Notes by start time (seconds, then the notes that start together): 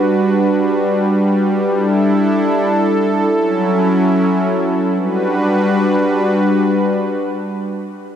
Already playing: G3 D4 F#4 B4
1.68 D4 E4 A4
3.32 F#3 C#4 E4
4.95 G3 D4 F#4 B4